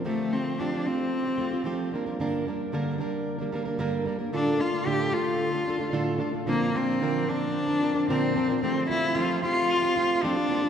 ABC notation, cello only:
X:1
M:4/4
L:1/8
Q:1/4=112
K:F
V:1 name="Cello"
A, C D C4 z | z8 | D F G F4 z | B, C2 D3 C2 |
C E F F3 D2 |]